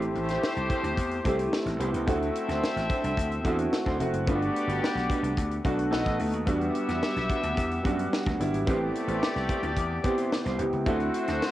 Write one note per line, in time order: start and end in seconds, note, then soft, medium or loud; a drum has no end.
0.00 0.74 A3 medium
0.00 1.76 A3 medium
0.00 0.74 C4 medium
0.00 0.74 E4 medium
0.00 0.74 G4 medium
0.00 1.76 G4 medium
0.00 1.76 C5 loud
0.00 muted clean electric guitar stroke soft
0.00 closed hi-hat soft
0.15 0.36 A1 medium
0.15 muted clean electric guitar stroke soft
0.15 closed hi-hat medium
0.29 0.46 E4 soft
0.29 0.46 G4 medium
0.29 0.46 C5 medium
0.29 snare soft
0.29 closed hi-hat medium
0.44 snare loud
0.56 0.67 C2 medium
0.56 muted clean electric guitar stroke medium
0.56 closed hi-hat soft
0.69 0.91 E4 medium
0.69 0.83 G4 medium
0.69 0.83 C5 loud
0.69 kick medium
0.69 closed hi-hat medium
0.83 0.94 D2 medium
0.83 muted clean electric guitar stroke medium
0.83 closed hi-hat medium
0.97 1.18 E2 loud
0.97 kick medium
0.97 closed hi-hat medium
1.11 muted clean electric guitar stroke soft
1.11 closed hi-hat soft
1.24 1.46 C2 medium
1.24 1.68 A3 medium
1.24 1.68 C4 medium
1.24 1.46 E4 medium
1.24 1.69 E4 medium
1.24 1.38 G4 medium
1.24 1.69 G4 medium
1.24 1.38 C5 loud
1.24 kick loud
1.24 closed hi-hat medium
1.39 muted clean electric guitar stroke soft
1.39 closed hi-hat medium
1.53 muted clean electric guitar stroke soft
1.53 snare loud
1.65 1.76 A1 medium
1.65 muted clean electric guitar stroke soft
1.65 snare soft
1.65 closed hi-hat soft
1.79 1.90 C2 loud
1.79 2.01 B3 medium
1.79 2.01 C4 medium
1.79 1.93 E4 medium
1.79 2.02 E4 medium
1.79 1.92 G4 medium
1.79 2.02 G4 medium
1.79 1.92 C5 medium
1.79 closed hi-hat medium
1.93 2.08 C#2 medium
1.93 2.06 E4 medium
1.93 2.07 G4 medium
1.93 2.06 C5 medium
1.93 closed hi-hat medium
2.06 2.29 D2 loud
2.06 2.93 A3 medium
2.06 3.96 C4 medium
2.06 2.94 C4 medium
2.06 2.28 D4 medium
2.06 2.94 E4 medium
2.06 2.20 F#4 medium
2.06 2.94 F#4 loud
2.06 3.95 A4 medium
2.06 2.19 C5 medium
2.06 3.95 E5 loud
2.06 kick loud
2.06 closed hi-hat medium
2.20 muted clean electric guitar stroke medium
2.20 closed hi-hat soft
2.34 muted clean electric guitar stroke soft
2.34 closed hi-hat medium
2.48 2.59 D2 loud
2.48 2.66 D4 soft
2.48 2.65 F#4 medium
2.48 2.65 C5 medium
2.48 snare soft
2.48 closed hi-hat medium
2.64 snare loud
2.76 2.87 A1 medium
2.76 muted clean electric guitar stroke medium
2.76 snare soft
2.76 closed hi-hat soft
2.90 3.11 D4 medium
2.90 3.03 F#4 medium
2.90 3.02 C5 medium
2.90 kick loud
2.90 closed hi-hat medium
3.03 3.14 C2 medium
3.03 muted clean electric guitar stroke medium
3.03 closed hi-hat medium
3.17 3.39 D2 loud
3.17 kick medium
3.17 closed hi-hat medium
3.31 muted clean electric guitar stroke medium
3.31 closed hi-hat soft
3.44 3.66 E2 medium
3.44 3.88 A3 medium
3.44 3.88 C4 medium
3.44 3.66 D4 medium
3.44 3.88 E4 medium
3.44 3.59 F#4 medium
3.44 3.88 F#4 medium
3.44 3.58 C5 loud
3.44 kick medium
3.44 closed hi-hat medium
3.59 muted clean electric guitar stroke medium
3.59 closed hi-hat medium
3.73 muted clean electric guitar stroke soft
3.73 snare loud
3.85 3.97 D2 loud
3.85 3.99 D4 medium
3.85 3.99 F#4 medium
3.85 3.99 C5 medium
3.85 kick medium
3.85 snare soft
3.85 closed hi-hat soft
3.99 4.10 F1 loud
3.99 4.21 A3 medium
3.99 4.21 C4 medium
3.99 4.21 E4 medium
3.99 4.22 F#4 medium
3.99 muted clean electric guitar stroke soft
3.99 closed hi-hat medium
4.13 4.27 F#1 medium
4.13 muted clean electric guitar stroke soft
4.13 closed hi-hat medium
4.27 4.48 G1 loud
4.27 5.14 A3 medium
4.27 5.62 B3 medium
4.27 5.14 B3 medium
4.27 4.49 D4 medium
4.27 5.14 D4 medium
4.27 4.34 F4 medium
4.27 4.41 F#4 medium
4.27 5.62 G4 medium
4.27 4.40 B4 medium
4.27 5.62 D5 loud
4.27 kick loud
4.27 closed hi-hat medium
4.35 5.18 F#4 loud
4.41 muted clean electric guitar stroke soft
4.41 closed hi-hat soft
4.55 muted clean electric guitar stroke soft
4.55 closed hi-hat medium
4.67 4.78 G1 medium
4.67 4.86 D4 medium
4.67 4.86 F#4 medium
4.67 4.85 B4 medium
4.67 closed hi-hat medium
4.84 snare loud
4.95 5.06 B1 medium
4.95 muted clean electric guitar stroke soft
4.95 snare soft
4.95 closed hi-hat soft
5.09 5.31 D4 medium
5.09 5.23 F#4 loud
5.09 5.22 B4 medium
5.09 kick medium
5.09 closed hi-hat medium
5.23 5.33 C2 medium
5.23 muted clean electric guitar stroke soft
5.23 closed hi-hat medium
5.37 5.58 D2 medium
5.37 kick medium
5.37 closed hi-hat medium
5.51 muted clean electric guitar stroke soft
5.51 closed hi-hat soft
5.64 5.86 B1 medium
5.64 5.89 A3 medium
5.64 5.89 B3 medium
5.64 5.86 D4 medium
5.64 5.92 D4 medium
5.64 5.78 F#4 medium
5.64 5.91 F#4 medium
5.64 5.77 B4 medium
5.64 kick loud
5.64 closed hi-hat medium
5.79 muted clean electric guitar stroke soft
5.79 closed hi-hat medium
5.91 6.03 B1 medium
5.91 6.13 A3 medium
5.91 6.13 B3 medium
5.91 6.19 B3 medium
5.91 6.14 D#4 medium
5.91 6.14 F#4 loud
5.91 6.19 A4 medium
5.91 6.19 D#5 medium
5.91 muted clean electric guitar stroke soft
5.91 snare loud
6.06 6.17 A1 medium
6.06 6.19 A3 medium
6.06 6.19 D#4 medium
6.06 6.20 F#4 medium
6.06 kick medium
6.06 snare soft
6.06 closed hi-hat soft
6.19 6.33 D2 medium
6.19 6.41 A3 medium
6.19 6.41 B3 medium
6.19 6.41 D#4 medium
6.19 6.42 F#4 medium
6.19 muted clean electric guitar stroke soft
6.19 open hi-hat medium
6.33 6.47 D#2 medium
6.33 muted clean electric guitar stroke soft
6.33 closed hi-hat medium
6.46 6.68 E2 loud
6.46 7.33 G3 medium
6.46 6.69 G3 medium
6.46 8.35 B3 medium
6.46 7.33 B3 medium
6.46 7.33 D4 medium
6.46 6.61 D4 medium
6.46 7.34 F#4 medium
6.46 6.60 F#4 medium
6.46 8.35 G4 medium
6.46 8.35 E5 loud
6.46 kick loud
6.46 closed hi-hat medium
6.61 muted clean electric guitar stroke soft
6.61 closed hi-hat soft
6.75 muted clean electric guitar stroke soft
6.75 closed hi-hat medium
6.89 6.99 E2 medium
6.89 7.06 G3 medium
6.89 7.06 D4 medium
6.89 7.05 F#4 medium
6.89 snare soft
6.89 closed hi-hat medium
7.03 snare loud
7.16 7.27 B1 medium
7.16 snare soft
7.16 closed hi-hat soft
7.29 7.51 G3 medium
7.29 7.43 D4 loud
7.29 7.43 F#4 loud
7.29 kick medium
7.29 closed hi-hat medium
7.43 7.54 D2 medium
7.43 muted clean electric guitar stroke medium
7.43 closed hi-hat medium
7.57 7.78 E2 loud
7.57 kick medium
7.57 closed hi-hat medium
7.71 muted clean electric guitar stroke medium
7.71 closed hi-hat soft
7.83 8.06 F#2 medium
7.83 8.27 G3 medium
7.83 8.06 G3 medium
7.83 8.28 B3 medium
7.83 8.28 D4 medium
7.83 7.98 D4 medium
7.83 8.28 F#4 medium
7.83 7.98 F#4 loud
7.83 kick loud
7.83 closed hi-hat medium
7.99 muted clean electric guitar stroke soft
7.99 closed hi-hat soft
8.13 muted clean electric guitar stroke soft
8.13 snare loud
8.26 8.37 D2 loud
8.26 8.38 G3 medium
8.26 8.39 D4 medium
8.26 8.39 F#4 medium
8.26 kick medium
8.26 snare soft
8.26 closed hi-hat soft
8.40 8.50 G1 loud
8.40 8.61 G3 medium
8.40 8.61 B3 medium
8.40 8.62 D4 medium
8.40 8.62 E4 medium
8.40 muted clean electric guitar stroke soft
8.40 closed hi-hat medium
8.53 8.64 G#1 medium
8.53 muted clean electric guitar stroke medium
8.53 closed hi-hat medium
8.67 8.88 A1 loud
8.67 10.55 A3 medium
8.67 9.53 B3 medium
8.67 9.54 C4 medium
8.67 8.88 E4 medium
8.67 9.54 E4 medium
8.67 10.55 G4 medium
8.67 8.80 G4 medium
8.67 9.54 G4 loud
8.67 8.80 C5 medium
8.67 10.55 D5 loud
8.67 kick loud
8.67 closed hi-hat medium
8.81 muted clean electric guitar stroke soft
8.95 muted clean electric guitar stroke soft
8.95 closed hi-hat medium
9.08 9.18 A1 medium
9.08 9.25 E4 medium
9.08 9.25 G4 medium
9.08 9.25 C5 medium
9.08 closed hi-hat medium
9.23 snare loud
9.36 9.46 C2 medium
9.36 muted clean electric guitar stroke soft
9.36 snare soft
9.36 closed hi-hat soft
9.49 9.71 E4 medium
9.49 9.63 G4 medium
9.49 9.62 C5 medium
9.49 kick medium
9.49 closed hi-hat medium
9.63 9.73 D2 medium
9.63 muted clean electric guitar stroke medium
9.63 closed hi-hat medium
9.76 9.98 E2 loud
9.76 muted clean electric guitar stroke soft
9.76 kick medium
9.76 closed hi-hat medium
9.91 muted clean electric guitar stroke soft
10.04 10.47 B3 medium
10.04 10.47 C4 medium
10.04 10.18 E4 medium
10.04 10.48 E4 medium
10.04 10.17 G4 loud
10.04 10.48 G4 medium
10.04 10.17 C5 loud
10.04 kick loud
10.04 closed hi-hat medium
10.18 10.31 E4 medium
10.18 10.31 G4 medium
10.18 10.31 C5 medium
10.18 closed hi-hat medium
10.32 muted clean electric guitar stroke soft
10.32 snare loud
10.45 10.56 C2 medium
10.45 10.58 E4 medium
10.45 10.58 G4 medium
10.45 10.59 C5 medium
10.45 snare soft
10.45 closed hi-hat soft
10.58 10.70 C2 medium
10.58 10.80 B3 medium
10.58 10.80 C4 medium
10.58 10.81 E4 medium
10.58 10.81 G4 medium
10.58 muted clean electric guitar stroke soft
10.58 closed hi-hat medium
10.73 10.83 C#2 medium
10.73 muted clean electric guitar stroke soft
10.73 closed hi-hat medium
10.86 11.08 D2 loud
10.86 11.51 A3 medium
10.86 11.51 C4 medium
10.86 11.08 D4 medium
10.86 11.51 E4 medium
10.86 11.51 F#4 medium
10.86 11.00 F#4 medium
10.86 11.51 F#4 loud
10.86 11.51 C5 loud
10.86 10.99 C5 loud
10.86 kick loud
10.86 closed hi-hat medium
11.00 muted clean electric guitar stroke soft
11.00 closed hi-hat soft
11.14 muted clean electric guitar stroke soft
11.14 closed hi-hat medium
11.27 11.39 D2 loud
11.27 11.45 D4 soft
11.27 11.45 F#4 medium
11.27 11.44 C5 medium
11.27 snare soft
11.27 closed hi-hat medium
11.42 snare loud